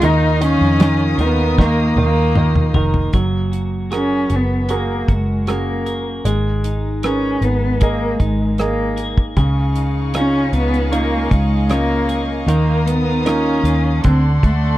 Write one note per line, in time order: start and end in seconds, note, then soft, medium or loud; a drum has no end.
0.00 0.57 D#2 loud
0.00 3.13 D#3 medium
0.00 0.40 D#3 medium
0.00 0.42 D#4 medium
0.00 3.10 A#4 medium
0.00 1.18 A#4 medium
0.00 3.10 D#5 medium
0.00 3.10 F5 medium
0.00 3.11 D#6 medium
0.00 closed hi-hat medium
0.41 0.78 D#3 medium
0.41 1.16 C#4 loud
0.41 2.34 D#4 medium
0.41 closed hi-hat medium
0.61 1.15 F2 medium
0.80 1.19 D#3 medium
0.80 1.95 F4 medium
0.80 snare loud
0.80 closed hi-hat medium
1.18 1.92 D#2 medium
1.18 1.58 D#3 medium
1.18 2.74 A#4 medium
1.18 closed hi-hat medium
1.23 1.64 B3 medium
1.58 1.96 D#3 medium
1.58 3.94 A#3 medium
1.58 kick medium
1.58 snare medium
1.63 1.99 A#3 medium
1.96 2.70 D#2 loud
1.96 2.36 D#3 medium
1.96 3.21 F4 medium
1.96 high tom medium
2.02 2.73 A#3 medium
2.35 2.75 D#3 medium
2.35 3.21 D#4 medium
2.35 mid tom medium
2.56 mid tom medium
2.73 3.10 F1 medium
2.73 3.13 D#3 medium
2.73 3.13 A#4 medium
2.73 floor tom medium
2.94 floor tom medium
3.13 4.26 F#1 medium
3.13 6.25 F#3 medium
3.13 6.22 F#3 medium
3.13 3.90 G#4 medium
3.13 kick medium
3.13 closed hi-hat medium
3.52 4.29 F#4 soft
3.52 closed hi-hat medium
3.91 4.67 F#4 soft
3.91 4.69 G#4 soft
3.91 4.67 G#4 soft
3.91 4.68 A#4 soft
3.91 cross-stick medium
3.91 closed hi-hat medium
3.96 4.37 C#4 medium
4.30 5.04 F#1 medium
4.30 5.07 F#4 soft
4.30 closed hi-hat medium
4.35 4.76 B3 medium
4.69 5.46 F#4 soft
4.69 5.86 G#4 medium
4.69 5.46 G#4 soft
4.69 5.46 A#4 soft
4.69 closed hi-hat medium
4.74 5.14 A#3 medium
5.08 6.21 F#1 medium
5.08 6.33 F#4 soft
5.08 kick medium
5.08 closed hi-hat soft
5.13 5.52 G#3 medium
5.47 6.08 A#3 medium
5.47 6.33 C#4 soft
5.47 6.23 F#4 soft
5.47 6.23 G#4 soft
5.47 6.24 A#4 soft
5.47 cross-stick medium
5.47 closed hi-hat medium
5.86 6.26 G#4 soft
5.86 closed hi-hat medium
6.25 7.38 G#1 medium
6.25 9.37 G#2 medium
6.25 9.33 G#3 medium
6.25 7.03 G#4 medium
6.25 closed hi-hat medium
6.64 7.42 D#4 soft
6.64 closed hi-hat medium
7.03 7.46 C#4 medium
7.03 7.80 G#4 medium
7.03 7.79 G#4 soft
7.03 7.79 A#4 soft
7.03 7.80 B4 soft
7.03 cross-stick medium
7.03 closed hi-hat medium
7.41 8.16 G#1 medium
7.41 7.84 B3 medium
7.41 8.19 D#4 soft
7.41 closed hi-hat medium
7.81 8.20 A#3 medium
7.81 8.97 G#4 medium
7.81 8.57 G#4 soft
7.81 8.57 A#4 soft
7.81 8.58 D#5 medium
7.81 kick medium
7.81 closed hi-hat medium
8.19 9.33 G#1 medium
8.19 8.57 G#3 medium
8.19 9.75 D#4 medium
8.19 kick medium
8.19 closed hi-hat soft
8.58 9.15 A#3 medium
8.58 9.35 G#4 soft
8.58 9.35 A#4 soft
8.58 9.35 D#5 soft
8.58 cross-stick medium
8.58 closed hi-hat medium
8.97 9.38 G#4 medium
8.97 closed hi-hat medium
9.18 kick medium
9.36 10.50 C#2 medium
9.36 12.45 C#3 medium
9.36 12.49 C#3 medium
9.36 12.46 G#4 medium
9.36 10.13 G#4 medium
9.36 14.00 D#5 medium
9.36 14.00 F5 medium
9.36 12.45 C#6 medium
9.36 kick medium
9.36 closed hi-hat medium
9.76 10.53 D#4 soft
9.76 closed hi-hat medium
10.14 10.90 C#4 soft
10.14 10.52 C#4 medium
10.14 10.90 D#4 soft
10.14 10.91 F4 soft
10.14 10.91 G#4 medium
10.14 cross-stick medium
10.14 closed hi-hat medium
10.52 11.27 C#2 medium
10.52 10.91 B3 medium
10.52 11.31 D#4 medium
10.52 closed hi-hat medium
10.74 closed hi-hat soft
10.92 11.34 A#3 medium
10.92 11.68 C#4 soft
10.92 11.68 D#4 soft
10.92 11.69 F4 medium
10.92 12.08 G#4 medium
10.92 closed hi-hat medium
11.31 12.44 C#2 medium
11.31 11.71 G#3 medium
11.31 12.56 D#4 soft
11.31 kick medium
11.31 closed hi-hat soft
11.69 12.28 A#3 medium
11.69 12.46 C#4 soft
11.69 12.56 C#4 medium
11.69 12.46 D#4 soft
11.69 12.46 F4 medium
11.69 cross-stick loud
11.69 closed hi-hat medium
12.09 12.48 G#4 medium
12.09 closed hi-hat medium
12.46 13.61 D#2 medium
12.46 14.03 D#3 medium
12.46 14.00 D#3 medium
12.46 12.87 A#3 medium
12.46 14.03 A#4 medium
12.46 13.25 A#4 medium
12.46 14.02 D#6 medium
12.46 closed hi-hat medium
12.85 13.27 B3 medium
12.85 13.06 D#4 soft
12.85 closed hi-hat medium
13.06 13.63 F4 soft
13.25 14.02 A#3 soft
13.25 14.04 C#4 medium
13.25 14.02 D#4 soft
13.25 14.02 F4 medium
13.25 14.12 A#4 medium
13.25 cross-stick medium
13.25 closed hi-hat medium
13.63 14.01 D#2 medium
13.63 14.12 F4 medium
13.63 closed hi-hat medium
14.03 14.41 D2 medium
14.03 14.78 D3 medium
14.03 14.23 C4 medium
14.03 14.78 A4 medium
14.03 14.78 D5 medium
14.03 14.78 F#5 medium
14.03 14.78 C6 medium
14.03 kick medium
14.03 closed hi-hat medium
14.43 14.78 D2 medium
14.43 14.78 A3 medium
14.43 14.78 F#4 soft
14.43 kick medium
14.43 closed hi-hat medium